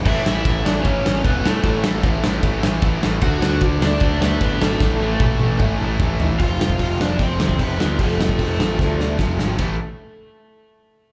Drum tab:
CC |x---------------|----------------|----------------|----------------|
RD |----x---x---x---|x---x---x---x---|x---x---x---x---|----------------|
HH |----------------|----------------|----------------|----------------|
SD |--o---o---o---o-|--o---o---o---o-|--o---o---o---o-|o---------------|
T1 |----------------|----------------|----------------|----o-o---------|
T2 |----------------|----------------|----------------|--------o-------|
FT |----------------|----------------|----------------|------------o-o-|
BD |o---o---o---o---|o---o---o---o---|o---o---o---o---|o---o---o---o---|

CC |----------------|----------------|----------------|
RD |----------------|----------------|b---------------|
HH |o---o---o---o---|o---o-----------|----------------|
SD |--o---o---o---o-|--o---o-o-o-o-o-|----------------|
T1 |----------------|----------------|----------------|
T2 |----------------|----------------|----------------|
FT |----------------|----------------|----------------|
BD |o--oo---o--oo---|o--oo---o---o---|o---------------|